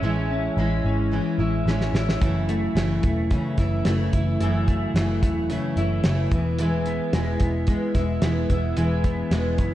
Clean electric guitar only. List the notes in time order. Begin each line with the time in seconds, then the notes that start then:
Already playing: E3 G#3 C#4
0.05 E4
0.31 C#4
0.59 G#3
0.86 C#4
1.13 E3
1.40 E4
1.68 C#4
1.95 E4
2.22 F#2 E4
2.49 A3
2.77 E3
3.04 A3
3.31 C#3
3.58 E4
3.86 A3
4.13 E4
4.40 F#2 E4
4.68 A3
4.95 E3
5.23 A3
5.50 C#3
5.78 E4
6.04 A3
6.32 E3
6.59 E3 E4
6.87 B3
7.14 G#3
7.41 B3
7.68 G#3
7.94 E4
8.22 B3
8.49 E4
8.77 E3 E4
9.04 B3
9.31 G#3
9.59 B3